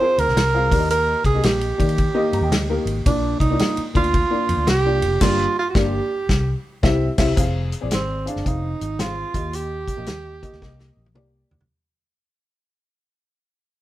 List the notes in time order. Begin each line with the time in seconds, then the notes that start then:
Already playing: C5
0.00 C4 F4 G#4 A#4
0.18 D2 A#4, ride
0.28 C2, snare
0.36 C2, snare, ride
0.54 C4 F4 G#4 F5
0.71 D#2 D#3 A#3 D#4 G4 D5, kick, open hi-hat, ride
0.78 D#5
0.90 A#4, hi-hat pedal, ride
1.24 C2 G#4, kick, ride
1.34 A#3 D#4 G4 D#5
1.43 A#1 G4, snare, ride
1.61 ride
1.78 D#3 A#3 D#4 G4 D5, kick, ride
1.89 ride
1.98 kick, ride
2.14 A#3 D#4 G4 D#5
2.33 G2 A#5, ride
2.41 D#2 G5
2.50 D2 D#5, snare, ride
2.69 A#3 D#4 G4 A#4
2.85 G#1, ride
3.06 A#1 A#2 A#3 D4 F4 D5, kick, ride
3.40 C2 D#4, kick, ride
3.50 A#3 D4 F4 D5
3.59 snare, ride
3.77 muted fingered electric bass stroke, ride
3.94 D2 A#3 D4 F4 D5, kick, ride
4.04 ride
4.14 kick, ride
4.30 A#3 D4 F4 D5
4.49 F2, ride
4.57 D2
4.67 C2 G4, snare, ride
4.85 A#3 D4 F4 D5
5.02 F1, ride
5.21 G1 G2 A#3 D4 F4 G4 D5, kick, snare, crash
5.59 F4
5.70 F#4
5.75 G1 A#3 D4 G4 D5, kick, snare
6.29 C2, kick, snare
6.83 C2 C4 E4 G4 E5, kick, snare
7.18 C2 C4 E4 G4 E5, kick, snare, crash
7.36 F1 C4 G#4 F5, kick, closed hi-hat
7.72 closed hi-hat
7.81 A#1 C4 G#4 D5
7.91 G#1 C4, snare, closed hi-hat
8.25 C4 D4 G#4 F5, closed hi-hat
8.36 G1, snare
8.44 F1 C4 D#4 G#4 F5, kick, closed hi-hat
8.81 G#1, closed hi-hat
8.99 C4 F4 G#4 F5, snare, closed hi-hat
9.34 D#2 D#3 A#3 G4 D#5, kick, closed hi-hat
9.53 G4, closed hi-hat
9.88 kick, closed hi-hat
9.96 A#1 A#3 G4 D#5
10.06 D#2, snare, closed hi-hat
10.42 A#3 G4 D#5, kick, closed hi-hat
10.53 D2, snare
10.61 C2 A#3 G4 D#5, kick, snare
10.79 snare
10.97 A#1
11.06 high tom
11.14 C2 A#3 G4 D5, mid tom
11.51 D2, floor tom
11.61 floor tom